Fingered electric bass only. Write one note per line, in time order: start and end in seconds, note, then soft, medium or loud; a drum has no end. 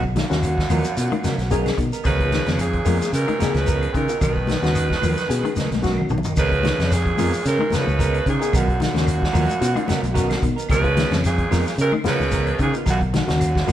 0.00 0.23 B1 loud
0.31 0.62 D#2 medium
0.70 0.82 D#2 medium
0.97 1.09 B2 loud
1.24 muted fingered electric bass stroke soft
1.38 1.70 B1 medium
1.78 1.90 B2 medium
2.05 2.38 C#2 medium
2.46 2.78 F2 medium
2.86 2.98 F2 medium
3.13 3.24 C#3 loud
3.40 muted fingered electric bass stroke soft
3.54 3.86 C#2 medium
3.94 4.06 C#3 medium
4.22 4.55 B1 loud
4.62 4.94 D#2 medium
5.02 5.14 D#2 medium
5.30 5.41 B2 loud
5.57 muted fingered electric bass stroke soft
5.71 6.02 B1 medium
6.10 6.22 B1 medium
6.37 6.70 C#2 loud
6.79 7.11 F2 medium
7.19 7.30 F2 loud
7.46 7.57 C#3 loud
7.73 muted fingered electric bass stroke soft
7.87 8.19 C#2 medium
8.26 8.38 C#3 medium
8.53 8.87 B1 loud
8.95 9.27 D#2 medium
9.34 9.46 D#2 loud
9.61 9.73 B2 loud
9.89 muted fingered electric bass stroke soft
10.03 10.35 B1 medium
10.42 10.54 B2 medium
10.70 11.03 C#2 loud
11.12 11.44 F2 medium
11.51 11.63 F2 medium
11.78 11.90 C#3 loud
12.05 muted fingered electric bass stroke soft
12.20 12.52 C#2 medium
12.59 12.71 C#3 medium
12.87 13.20 B1 loud
13.30 13.61 D#2 medium
13.69 13.72 D#2 medium